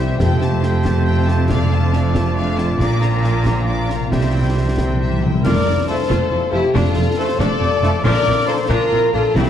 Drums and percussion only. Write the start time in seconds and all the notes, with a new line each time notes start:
0.20 concert bass drum, snare, crash
0.42 snare
0.63 snare
0.85 concert bass drum, snare
1.28 snare
1.50 concert bass drum, snare
1.93 snare
2.15 concert bass drum, snare
2.58 snare
2.80 concert bass drum, snare
3.02 snare
3.24 snare
3.46 concert bass drum, snare
3.90 snare
4.12 concert bass drum, snare
4.78 concert bass drum, snare
5.45 concert bass drum, snare, crash
6.10 concert bass drum, snare
6.75 concert bass drum, snare
7.40 concert bass drum, snare
7.84 snare
8.05 concert bass drum, snare, crash
8.70 concert bass drum, snare
9.36 concert bass drum, snare